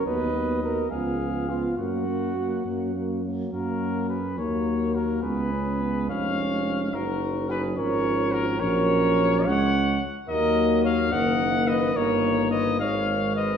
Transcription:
X:1
M:6/8
L:1/16
Q:3/8=71
K:F#
V:1 name="Trumpet"
d6 e6 | f8- f z3 | A4 B2 c4 A2 | B6 e6 |
A4 B2 c4 A2 | c6 f4 z2 | [K:Ebm] e4 f2 g4 e2 | d4 e2 f4 e2 |]
V:2 name="Flugelhorn"
B4 A2 G4 E2 | F8- F2 z2 | F4 G2 A4 F2 | G6 c6 |
F4 G2 A4 F2 | A6 c4 z2 | [K:Ebm] B4 d2 e4 c2 | B4 c2 d4 c2 |]
V:3 name="French horn"
B,2 B,2 B,2 B,2 B,2 B,2 | A,2 A,2 A,2 A,2 A,2 A,2 | A,6 A,6 | B,2 C2 B,2 C6 |
D6 C6 | C8- C2 z2 | [K:Ebm] B,6 B,6 | B,6 A,6 |]
V:4 name="Trombone" clef=bass
F,2 F,2 F,2 E,2 E,2 E,2 | F,2 F,2 F,2 F,2 F,2 F,2 | F,6 F,6 | G,12 |
F,6 E,6 | F,6 G,4 z2 | [K:Ebm] G,6 E,6 | E,6 E,6 |]
V:5 name="Tuba" clef=bass
D,,6 C,,6 | F,,6 F,,6 | F,,6 D,,6 | C,,6 E,,,6 |
F,,,6 G,,,6 | A,,,6 C,,4 z2 | [K:Ebm] E,,6 G,,,6 | =G,,,6 A,,,6 |]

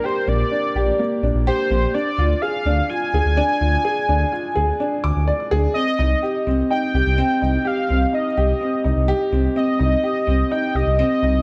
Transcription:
X:1
M:4/4
L:1/16
Q:1/4=126
K:Cm
V:1 name="Soft synth lead"
c2 d8 z2 c4 | d4 f4 a8- | a12 z4 | e6 z2 g8 |
f4 e8- e2 z2 | e8 g2 e6 |]
V:2 name="Grand piano"
G2 B,2 D2 G2 B,2 D2 G2 B,2 | D2 F2 A2 D2 F2 A2 D2 F2 | A2 D2 F2 A2 D2 d'2 d2 A2 | C2 E2 G2 C2 E2 G2 C2 E2 |
G2 C2 E2 G2 C2 E2 G2 C2 | C2 E2 G2 C2 E2 G2 C2 E2 |]
V:3 name="Detuned saw bass" clef=bass
z2 B,,, z3 B,,, z3 B,,, B,,, z2 B,,, z | z2 D,, z3 D,, z3 D,, D,, z2 D,, z | z2 D,, z3 D,, z3 D,, D,, z2 D,, z | z2 C,, z3 C,, z3 C,, C,, z2 C,, z |
z2 C,, z3 C,, z3 C,, C,, z2 C,, z | z2 C,, z3 C,, z3 C,, C,, z2 C,, z |]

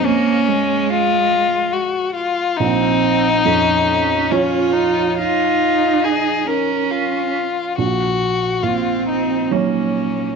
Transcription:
X:1
M:3/4
L:1/8
Q:1/4=70
K:Bbm
V:1 name="Violin"
D2 F2 G F | E4 D E | F2 A B F2 | G2 F E D2 |]
V:2 name="Cello"
B, A,3 z2 | C2 D2 F2 | E3 D2 z | z2 C2 B,2 |]
V:3 name="Felt piano" clef=bass
[A,cf]6 | B,,,2 F,,2 [F,Fd]2- | [F,Fd]6 | B,,,2 B,,2 [G,Ed]2 |]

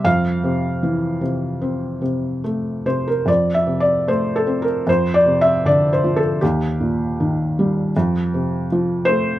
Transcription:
X:1
M:4/4
L:1/16
Q:1/4=77
K:F
V:1 name="Felt piano"
f12 z2 c B | (3d2 e2 d2 (3c2 A2 B2 (3c2 d2 e2 (3d2 c2 A2 | G12 z2 c2 |]
V:2 name="Felt piano" clef=bass
F,,2 C,2 E,2 C,2 C2 C,2 A,2 C,2 | F,,2 C,2 A,2 C2 F,,2 C,2 D,2 F,2 | _E,,2 B,,2 _E,2 G,2 F,,2 C,2 F,2 A,2 |]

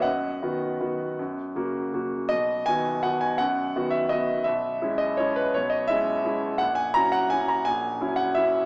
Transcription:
X:1
M:3/4
L:1/8
Q:1/4=166
K:B
V:1 name="Grand piano"
[df]6- | [df]4 z2 | d2 g2 f g | f3 e d2 |
e3 d c B | c d e4 | f g a f g a | g3 f e2 |]
V:2 name="Grand piano"
F,,2 [D,B,F]2 [D,B,F]2 | F,,2 [C,A,F]2 [C,A,F]2 | B,,,2 [D,B,F]2 [D,B,F]2 | F,,2 [D,B,F]2 [D,B,F]2 |
B,,,2 [G,CE]2 [G,CE]2 | B,,,2 [G,CE]2 [G,CE]2 | A,,,2 [F,CE]2 [F,CE]2 | A,,,2 [F,CE]2 [F,CE]2 |]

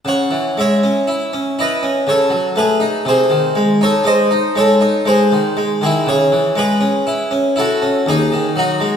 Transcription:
X:1
M:3/4
L:1/16
Q:1/4=60
K:C#m
V:1 name="Harpsichord"
[cf]2 [ce]4 [Bd]2 [Ac]2 [GB]2 | [G^B]3 [Ac] [Bd]2 [Ac]2 [GB]3 [EG] | [Gc]2 [GB]4 [FA]2 [DG]2 [DF]2 |]
V:2 name="Harpsichord" clef=bass
C, E, G, C E C E C C, F, A, D | ^B,, D, G, D G, D G, D G, D, G, D, | C, E, G, C E C E C D,, D, F, G, |]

